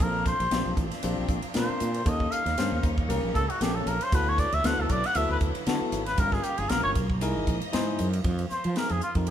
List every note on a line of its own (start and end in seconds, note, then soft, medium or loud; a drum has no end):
0.00 0.31 A#1 loud
0.00 2.04 C3 medium
0.00 2.04 F3 medium
0.00 4.08 A#3 medium
0.00 0.34 C4 medium
0.00 2.04 C4 medium
0.00 0.35 D4 medium
0.00 2.04 D4 medium
0.00 0.35 F4 medium
0.00 0.35 A4 medium
0.00 0.26 A#4 medium
0.00 kick loud
0.00 hi-hat pedal medium
0.00 ride medium
0.26 0.74 C5 medium
0.26 kick medium
0.26 snare soft
0.26 hi-hat pedal medium
0.26 ride medium
0.40 0.49 A#1 medium
0.40 ride medium
0.51 0.63 A#1 loud
0.51 0.86 C4 medium
0.51 0.86 D4 medium
0.51 0.86 F4 medium
0.51 0.86 G4 medium
0.51 snare loud
0.51 hi-hat pedal medium
0.51 ride medium
0.66 0.75 A#1 medium
0.77 0.88 A1 medium
0.77 kick medium
0.77 hi-hat pedal medium
0.77 ride medium
0.91 snare soft
0.91 ride medium
1.03 1.15 A#1 medium
1.03 1.38 C4 medium
1.03 1.38 D4 medium
1.03 1.38 F4 medium
1.03 1.38 G4 medium
1.03 hi-hat pedal medium
1.03 ride medium
1.18 1.27 A#1 medium
1.28 1.40 A#1 medium
1.28 kick medium
1.28 hi-hat pedal medium
1.28 ride soft
1.42 muted fretless electric bass stroke soft
1.42 ride medium
1.54 1.67 A#2 medium
1.54 1.89 C4 medium
1.54 1.89 D4 medium
1.54 1.90 F4 medium
1.54 1.90 A#4 medium
1.54 2.10 C5 medium
1.54 snare loud
1.54 hi-hat pedal medium
1.54 ride medium
1.70 muted fretless electric bass stroke soft
1.80 2.01 A#2 medium
1.80 hi-hat pedal medium
1.80 ride medium
1.94 ride medium
2.05 2.26 D#2 loud
2.05 4.10 C#3 medium
2.05 4.10 G3 medium
2.05 2.41 A#3 medium
2.05 2.41 C#4 medium
2.05 6.14 C#4 medium
2.05 4.10 D#4 medium
2.05 2.41 G4 medium
2.05 2.41 A4 medium
2.05 2.33 D#5 medium
2.05 kick loud
2.05 hi-hat pedal medium
2.05 ride medium
2.20 kick medium
2.31 2.83 F5 medium
2.31 hi-hat pedal medium
2.31 ride medium
2.46 2.55 D#2 medium
2.46 snare soft
2.46 ride medium
2.58 2.69 G2 loud
2.58 2.93 A#3 medium
2.58 2.93 C#4 medium
2.58 2.93 G4 medium
2.58 2.93 C5 medium
2.58 snare loud
2.58 hi-hat pedal medium
2.58 ride medium
2.72 2.81 D#2 medium
2.83 3.10 D#2 medium
2.83 kick medium
2.83 hi-hat pedal medium
2.83 ride medium
2.98 kick medium
3.09 3.20 C#2 medium
3.09 3.44 A#3 medium
3.09 3.44 C#4 medium
3.09 3.44 G4 medium
3.09 3.45 A#4 medium
3.09 hi-hat pedal medium
3.09 ride medium
3.23 3.33 A#1 medium
3.35 3.46 C#2 medium
3.35 3.51 A4 loud
3.35 kick medium
3.35 hi-hat pedal medium
3.35 ride medium
3.50 3.63 F#4 medium
3.50 ride medium
3.61 3.81 A#1 medium
3.61 3.96 A#3 medium
3.61 3.96 C#4 medium
3.61 3.77 G4 medium
3.61 3.96 G4 medium
3.61 3.96 A4 medium
3.61 snare loud
3.61 hi-hat pedal medium
3.61 ride medium
3.75 3.90 A4 medium
3.86 3.97 A#1 medium
3.86 4.05 A#4 medium
3.86 hi-hat pedal medium
3.86 ride medium
4.01 4.16 C5 loud
4.01 ride medium
4.12 4.44 D2 loud
4.12 6.16 D3 medium
4.12 6.16 F#3 medium
4.12 4.47 B3 medium
4.12 6.16 B3 medium
4.12 6.16 E4 medium
4.12 4.47 E4 medium
4.12 4.47 F#4 medium
4.12 4.48 A4 medium
4.12 4.30 B4 medium
4.12 kick loud
4.12 hi-hat pedal medium
4.12 ride medium
4.29 4.41 C#5 loud
4.38 4.56 D5 medium
4.38 kick medium
4.38 snare soft
4.38 hi-hat pedal medium
4.38 ride medium
4.52 4.62 D2 medium
4.52 4.67 E5 medium
4.52 ride medium
4.64 4.75 D2 loud
4.64 4.99 B3 medium
4.64 4.99 E4 medium
4.64 4.99 F#4 medium
4.64 4.99 A4 medium
4.64 4.82 F#5 loud
4.64 snare loud
4.64 hi-hat pedal medium
4.64 ride medium
4.78 4.87 D2 medium
4.78 4.92 A4 medium
4.89 5.01 B1 medium
4.89 5.07 D5 loud
4.89 kick medium
4.89 hi-hat pedal medium
4.89 ride medium
5.04 5.18 F#5 loud
5.04 snare soft
5.04 ride medium
5.15 5.26 D2 medium
5.15 5.50 B3 medium
5.15 5.50 E4 medium
5.15 5.51 F#4 medium
5.15 5.51 A4 medium
5.15 5.30 E5 medium
5.15 hi-hat pedal medium
5.15 ride medium
5.29 5.39 D2 medium
5.29 5.37 B4 medium
5.41 5.52 D2 medium
5.41 kick medium
5.41 hi-hat pedal medium
5.41 ride medium
5.55 muted fretless electric bass stroke soft
5.55 ride medium
5.66 5.78 D3 medium
5.66 6.02 B3 loud
5.66 6.02 E4 medium
5.66 6.02 F#4 medium
5.66 6.02 A4 loud
5.66 snare loud
5.66 hi-hat pedal medium
5.66 ride medium
5.81 muted fretless electric bass stroke soft
5.92 6.13 G#1 medium
5.92 hi-hat pedal medium
5.92 ride medium
6.06 6.21 B4 medium
6.06 snare soft
6.06 ride medium
6.18 6.38 G1 loud
6.18 7.20 C#3 medium
6.18 7.20 F3 medium
6.18 7.20 G3 medium
6.18 8.22 A#3 medium
6.18 6.53 C#4 medium
6.18 7.20 F4 medium
6.18 6.53 F4 medium
6.18 6.54 G4 medium
6.18 6.35 A#4 medium
6.18 6.54 A#4 medium
6.18 kick loud
6.18 hi-hat pedal medium
6.18 ride medium
6.32 6.45 G#4 medium
6.32 kick medium
6.32 snare soft
6.43 6.60 G4 medium
6.43 hi-hat pedal medium
6.43 ride medium
6.58 6.67 G1 medium
6.58 6.71 G#4 medium
6.58 ride medium
6.69 6.81 A#1 loud
6.69 7.05 C#4 medium
6.69 7.05 F4 medium
6.69 7.05 G4 medium
6.69 6.83 A#4 medium
6.69 7.05 A#4 medium
6.69 snare loud
6.69 hi-hat pedal medium
6.69 ride medium
6.83 6.93 G1 loud
6.83 6.90 C#5 loud
6.95 7.22 B1 medium
6.95 kick medium
6.95 hi-hat pedal medium
6.95 ride medium
7.10 kick medium
7.21 7.33 C2 loud
7.21 8.23 C3 medium
7.21 8.23 E3 medium
7.21 8.23 G#3 medium
7.21 7.56 D#4 medium
7.21 7.56 E4 medium
7.21 7.56 G#4 medium
7.21 7.57 A#4 loud
7.21 8.23 D#5 medium
7.21 hi-hat pedal medium
7.21 ride medium
7.37 7.45 G#1 medium
7.47 7.58 A#1 medium
7.47 kick medium
7.47 hi-hat pedal medium
7.47 ride medium
7.62 ride medium
7.73 7.97 G#2 medium
7.73 8.07 D#4 loud
7.73 8.08 E4 medium
7.73 8.08 G#4 medium
7.73 8.08 C5 loud
7.73 snare loud
7.73 hi-hat pedal medium
7.73 ride medium
7.99 8.22 F#2 medium
7.99 hi-hat pedal medium
7.99 ride medium
8.13 ride medium
8.24 8.44 F2 medium
8.24 kick loud
8.24 ride medium
8.39 ride medium
8.50 8.79 C5 medium
8.50 muted fretless electric bass stroke soft
8.50 snare soft
8.50 hi-hat pedal medium
8.64 8.74 F3 medium
8.64 ride medium
8.75 9.01 C4 medium
8.75 9.01 D#4 medium
8.75 9.01 G4 medium
8.75 9.01 G#4 medium
8.75 8.93 A#4 medium
8.75 snare medium
8.75 ride medium
8.89 8.99 F2 medium
8.89 9.02 G#4 medium
8.89 ride soft
9.01 9.14 F4 medium
9.01 hi-hat pedal medium
9.15 9.30 F2 medium
9.15 9.30 C4 medium
9.15 9.30 D#4 medium
9.15 9.30 G4 medium
9.15 9.30 A#4 medium
9.15 kick medium
9.15 ride medium
9.27 ride medium